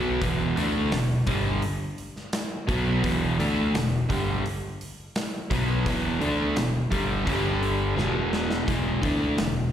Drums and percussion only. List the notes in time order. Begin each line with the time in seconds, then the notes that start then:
0.22 kick, open hi-hat
0.57 open hi-hat
0.92 snare, open hi-hat
1.27 kick, open hi-hat
1.62 open hi-hat
1.98 open hi-hat
2.16 snare
2.33 snare, open hi-hat
2.69 kick, open hi-hat
3.04 kick, open hi-hat
3.40 open hi-hat
3.75 snare, open hi-hat
4.10 kick, open hi-hat
4.46 open hi-hat
4.81 open hi-hat
5.16 snare, open hi-hat
5.51 kick, open hi-hat
5.86 kick, open hi-hat
6.21 open hi-hat
6.56 snare, open hi-hat
6.92 kick, open hi-hat
7.27 kick, open hi-hat
7.63 open hi-hat
7.98 snare
8.33 snare
8.51 snare
8.68 kick, open hi-hat
9.03 kick, open hi-hat
9.38 snare, open hi-hat